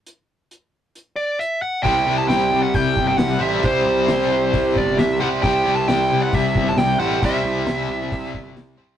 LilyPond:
<<
  \new Staff \with { instrumentName = "Lead electric guitar" } { \time 4/4 \key c \lydian \tempo 4 = 134 r2 r8 d''8 e''8 fis''8 | g''8. a''16 g''8. fis''16 g''8. g''16 fis''8 e''8 | c''2~ c''8 d''8 e''8 fis''8 | g''8. a''16 g''8. fis''16 e''8. a''16 g''8 fis''8 |
e''2. r4 | }
  \new Staff \with { instrumentName = "Overdriven electric guitar" } { \time 4/4 \key c \lydian r1 | <c g c' e' g' c''>2.~ <c g c' e' g' c''>8 <c g c' e' g' c''>8 | <c g c' e' g' c''>2.~ <c g c' e' g' c''>8 <c g c' e' g' c''>8 | <c g c' e' g' c''>2.~ <c g c' e' g' c''>8 <c g c' e' g' c''>8 |
<c g c' e' g' c''>2.~ <c g c' e' g' c''>8 <c g c' e' g' c''>8 | }
  \new Staff \with { instrumentName = "Overdriven electric guitar" } { \clef bass \time 4/4 \key c \lydian r1 | <c g c'>2.~ <c g c'>8 <c g c'>8 | <c g c'>2.~ <c g c'>8 <c g c'>8 | <c g c'>2.~ <c g c'>8 <c g c'>8 |
<c g c'>2.~ <c g c'>8 <c g c'>8 | }
  \new Staff \with { instrumentName = "Picked electric bass" } { \clef bass \time 4/4 \key c \lydian r1 | c,8 c,8 c,8 c,8 c,8 g,,8 c,8 a,,8 | c,8 c,8 c,8 c,8 c,8 g,,8 c,8 c,8 | c,8 c,8 c,8 c,8 c,8 g,,8 c,8 a,,8 |
c,8 c,8 c,8 c,8 c,8 g,,8 c,8 c,8 | }
  \new DrumStaff \with { instrumentName = "Drums" } \drummode { \time 4/4 hh4 hh4 hh4 hh4 | <hho bd>4 <hho sn>4 <hho bd>8 bd16 sn16 <hho sn>4 | <hho bd>4 <hho sn>4 <hho bd>8 bd16 sn16 <hho sn>4 | <hho bd>4 <hho sn>4 <hho bd>8 bd16 sn16 <hho sn>4 |
<hho bd>4 <hho sn>8. sn16 <hho bd>8 bd16 sn16 <hho sn>4 | }
>>